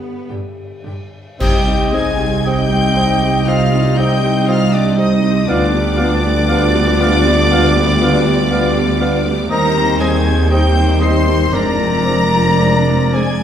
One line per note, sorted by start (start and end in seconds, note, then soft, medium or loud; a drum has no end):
0.00 1.08 D3 medium
0.00 0.26 B3 medium
0.00 1.07 G4 medium
0.00 0.27 B4 medium
0.29 0.38 G2 soft
0.29 0.37 D3 soft
0.29 0.37 G4 soft
0.29 0.37 G5 soft
0.84 0.93 G2 soft
0.84 0.92 D3 soft
0.84 0.92 G4 soft
0.84 0.95 G5 soft
1.39 5.44 C2 medium
1.39 5.45 C2 medium
1.39 2.43 C3 medium
1.39 2.42 G3 medium
1.39 1.65 G3 medium
1.39 2.42 C4 medium
1.39 1.56 C4 medium
1.39 2.42 D#4 medium
1.39 1.65 D#4 medium
1.39 1.94 G4 medium
1.39 2.42 D#5 medium
1.39 1.57 D#5 medium
1.39 1.90 G5 medium
1.39 1.91 G6 loud
1.39 concert bass drum medium
1.39 crash medium
1.67 1.94 C4 medium
1.67 1.94 G4 medium
1.92 2.20 G3 medium
1.92 2.10 C4 medium
1.92 2.19 D#4 medium
1.92 2.44 G#4 medium
1.92 2.10 D#5 medium
1.92 2.45 G#5 medium
1.92 2.47 G#5 medium
1.92 2.47 G#6 loud
2.20 2.46 C4 medium
2.20 2.46 G4 medium
2.45 5.45 C3 medium
2.45 2.70 G3 medium
2.45 5.45 G3 medium
2.45 5.45 C4 loud
2.45 2.63 C4 medium
2.45 2.70 D#4 medium
2.45 5.45 D#4 loud
2.45 3.48 G4 medium
2.45 5.49 D#5 medium
2.45 2.62 D#5 medium
2.45 3.50 G5 loud
2.45 3.48 G5 medium
2.45 3.48 G6 loud
2.69 2.96 C4 medium
2.69 2.96 G4 medium
2.95 3.21 G3 medium
2.95 3.13 C4 medium
2.95 3.21 D#4 medium
2.99 3.15 D#5 medium
3.20 3.47 C4 medium
3.20 3.47 G4 medium
3.45 3.70 G3 medium
3.45 3.64 C4 medium
3.45 3.70 D#4 medium
3.45 4.00 F4 medium
3.45 3.65 D#5 medium
3.45 3.99 F5 medium
3.45 4.00 F5 medium
3.45 3.98 F6 loud
3.70 3.97 C4 medium
3.70 3.97 G4 medium
3.94 4.22 G3 medium
3.94 4.22 D#4 medium
3.94 4.50 G4 medium
3.94 4.14 D#5 medium
3.94 4.47 G5 medium
3.94 4.49 G6 loud
3.99 4.15 C4 medium
3.99 4.50 G5 medium
4.21 4.48 C4 medium
4.21 4.48 G4 medium
4.46 4.71 G3 medium
4.46 4.64 C4 medium
4.46 4.71 D#4 medium
4.46 4.73 F4 medium
4.46 4.64 D#5 medium
4.46 4.73 F5 medium
4.46 4.75 F5 medium
4.46 4.74 F6 loud
4.71 4.99 C4 medium
4.71 4.98 D4 medium
4.71 4.99 G4 medium
4.71 4.98 D5 medium
4.71 5.00 D5 medium
4.71 4.99 D6 loud
4.95 5.23 G3 medium
4.95 5.15 C4 medium
4.95 5.46 D#4 loud
4.95 5.23 D#4 medium
4.95 5.47 D#5 medium
4.95 5.14 D#5 medium
4.95 5.48 D#5 medium
5.00 5.48 D#6 loud
5.22 5.48 C4 medium
5.22 5.48 G4 medium
5.45 9.51 D2 medium
5.45 9.36 D3 medium
5.45 5.64 B3 medium
5.45 9.35 B3 medium
5.45 9.20 D4 loud
5.45 5.71 D4 medium
5.45 5.71 F4 medium
5.45 9.35 F4 loud
5.45 9.45 D5 loud
5.45 9.24 D5 loud
5.45 9.34 D5 loud
5.45 9.51 D6 loud
5.49 9.52 D2 medium
5.49 9.36 G3 medium
5.49 5.65 F5 medium
5.72 5.98 B3 medium
5.72 5.98 G4 medium
5.97 6.16 B3 medium
5.97 6.24 D4 medium
5.97 6.24 F4 medium
5.97 6.13 F5 medium
6.24 6.49 B3 medium
6.24 6.50 G4 medium
6.49 6.67 B3 medium
6.49 6.73 D4 medium
6.49 6.73 F4 medium
6.49 6.65 F5 medium
6.75 7.00 B3 medium
6.75 7.00 G4 medium
6.99 7.16 B3 medium
6.99 7.25 D4 medium
6.99 7.25 F4 medium
6.99 7.18 F5 medium
7.26 7.51 B3 medium
7.26 7.51 G4 medium
7.50 7.67 B3 medium
7.50 7.74 D4 medium
7.50 7.74 F4 medium
7.50 7.68 F5 medium
7.75 8.00 B3 medium
7.75 8.00 G4 medium
8.01 8.17 B3 medium
8.01 8.26 D4 medium
8.01 8.26 F4 medium
8.01 8.19 F5 medium
8.26 8.51 B3 medium
8.26 8.51 G4 medium
8.51 8.67 B3 medium
8.51 8.75 D4 medium
8.51 8.75 F4 medium
8.51 8.68 F5 medium
8.77 9.02 B3 medium
8.77 9.02 G4 medium
9.01 9.18 B3 medium
9.01 9.27 D4 medium
9.01 9.27 F4 medium
9.01 9.17 F5 medium
9.27 9.52 B3 medium
9.27 9.51 G4 medium
9.50 11.49 D#2 medium
9.50 11.50 D#2 medium
9.50 10.48 D#3 medium
9.50 9.75 G3 medium
9.50 10.48 G3 medium
9.50 9.66 C4 medium
9.50 10.47 C4 medium
9.50 10.47 D#4 medium
9.50 9.75 D#4 medium
9.50 10.03 A#4 loud
9.50 10.47 C5 medium
9.50 9.67 D#5 medium
9.50 10.00 A#5 loud
9.50 9.97 A#5 loud
9.50 10.00 A#6 loud
9.77 10.01 C4 medium
9.77 10.01 G4 medium
10.00 10.26 G3 medium
10.00 10.17 C4 medium
10.00 10.26 D#4 medium
10.00 10.52 G#4 medium
10.00 10.16 D#5 medium
10.00 10.49 G#5 medium
10.00 10.51 G#5 medium
10.00 10.51 G#6 loud
10.26 10.51 C4 medium
10.26 10.51 G4 medium
10.50 11.52 D#3 medium
10.50 10.74 G3 medium
10.50 11.52 G3 medium
10.50 10.68 C4 medium
10.50 11.52 C4 medium
10.50 10.75 D#4 medium
10.50 11.52 D#4 medium
10.50 11.04 G4 medium
10.50 11.55 C5 medium
10.50 10.66 D#5 medium
10.50 11.01 G5 medium
10.50 11.02 G5 medium
10.50 11.01 G6 loud
10.78 11.02 C4 medium
10.78 11.03 G4 medium
11.00 11.28 G3 medium
11.00 11.18 C4 medium
11.00 11.28 D#4 medium
11.00 11.55 C5 loud
11.00 11.17 D#5 medium
11.00 11.54 C6 loud
11.00 11.52 C6 loud
11.00 11.53 C7 loud
11.28 11.54 C4 medium
11.28 11.54 G4 medium
11.52 13.43 F1 medium
11.52 13.43 F2 medium
11.52 13.43 F3 medium
11.52 13.43 G#3 medium
11.52 11.79 G#3 medium
11.52 11.69 C4 medium
11.52 13.43 C4 medium
11.52 13.43 D4 medium
11.52 11.78 D4 medium
11.52 13.14 A#4 loud
11.52 11.68 D5 medium
11.52 13.43 D5 medium
11.52 13.15 A#5 loud
11.52 13.14 A#6 loud
11.80 12.06 C4 medium
11.80 12.06 F4 medium
12.05 12.34 G#3 medium
12.05 12.21 C4 medium
12.05 12.33 D4 medium
12.05 12.21 D5 medium
12.35 12.61 C4 medium
12.35 12.61 F4 medium
12.59 12.75 C4 medium
12.59 12.75 D5 medium
12.63 12.87 G#3 medium
12.63 12.87 D4 medium
12.89 13.15 C4 medium
12.89 13.15 F4 medium
13.13 13.43 G#3 medium
13.13 13.29 C4 medium
13.13 13.43 D4 medium
13.13 13.43 G#4 medium
13.13 13.29 D5 medium
13.13 13.43 G#5 medium
13.13 13.43 G#6 loud